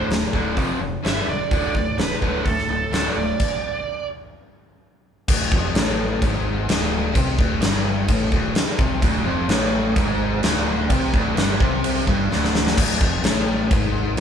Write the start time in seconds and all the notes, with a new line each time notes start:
0.09 D1 D2 A2, snare, open hi-hat
0.32 D1 D2 A2 D3, kick
0.56 F1 F2 C3 F3, kick, open hi-hat
0.80 F1 F2 C3
1.03 G1 G2 D3 G3 E5, snare, open hi-hat
1.27 E1 G2 D3 D5
1.51 D1 D2 A2 D3, kick, open hi-hat
1.74 D1 D2 A2, kick
1.98 D1 D2 A2 B4, snare, open hi-hat
2.22 D1 D2 A2 D3, kick
2.45 D2 A2 A4, kick, open hi-hat
2.59 snare
2.68 D1 D2 A2 A4
2.92 D1 D2 A2 D3 A4, snare, open hi-hat
3.16 D1 D2 A2 D5
3.39 kick, crash
5.28 D1 D2, kick, crash
5.52 F1 F2, kick
5.75 A1 A2, snare, crash
6.22 G#1 G#2, kick, crash
6.68 D1 D2, snare, crash
7.15 C2 C3, kick, crash
7.38 D1 D2, kick
7.61 G1 G2, snare, crash
8.08 A1 A2, kick, crash
8.31 D1 D2, kick
8.55 muted picked electric bass stroke, muted overdriven electric guitar stroke, snare, crash
8.78 C2 C3, kick
9.02 D1 D2, kick, crash
9.25 F1 F2
9.49 A1 A2, snare, crash
9.96 G#1 G#2, kick, crash
10.43 D1 D2, snare, crash
10.89 C2 C3, kick, crash
11.14 D1 D2, kick
11.37 G1 G2, snare, crash
11.60 C2 C3, kick
11.84 crash
12.07 G1 G2, kick
12.30 D1 D2, snare
12.44 snare
12.55 snare
12.67 snare
12.77 D1 D2, kick, crash
13.00 F1 F2, kick
13.23 A1 A2, snare, crash
13.70 G#1 G#2, kick, crash
14.17 D2